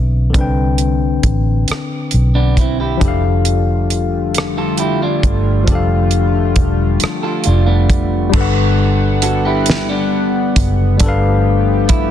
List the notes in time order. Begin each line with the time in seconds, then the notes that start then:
Already playing: B1 D3 C4 D4 B4 E5
0.30 D3 C4
0.34 C2 D4 B4, kick, closed hi-hat
0.41 G5
0.78 closed hi-hat
1.23 A1, kick, closed hi-hat
1.68 muted fingered electric bass stroke, cross-stick, closed hi-hat
2.11 B1, closed hi-hat
2.35 B3 D4
2.57 C4 E4, kick, closed hi-hat
2.80 E4 G4
2.97 F3 D4
3.01 F1 D3 G3 A3 F4 G4, kick, closed hi-hat
3.05 A4 F5
3.45 closed hi-hat
3.90 closed hi-hat
4.35 cross-stick, closed hi-hat
4.58 F4 A4
4.78 E4 G4, closed hi-hat
5.02 D4 F4
5.23 G1, kick, closed hi-hat
5.64 F3 D4, kick, closed hi-hat
5.68 F1 G4 A4
5.75 F5
6.11 closed hi-hat
6.56 E1, kick, closed hi-hat
7.00 muted fingered electric bass stroke, cross-stick, closed hi-hat
7.23 F4 A4
7.44 F1 D4 F4, closed hi-hat
7.66 B3 D4
7.90 kick, closed hi-hat
8.30 D3 G3 B3 D4 F#5, crash
8.34 G1 A4, kick
8.38 B4 F#5
9.22 F#4 A4, closed hi-hat
9.45 E4 G4
9.66 snare, closed hi-hat
9.89 B3 D4
10.56 F#1, kick, closed hi-hat
10.97 F3 G3 A3 D4 G4, kick, closed hi-hat
11.01 G1 A4
11.06 B4 F5
11.89 E4, kick, closed hi-hat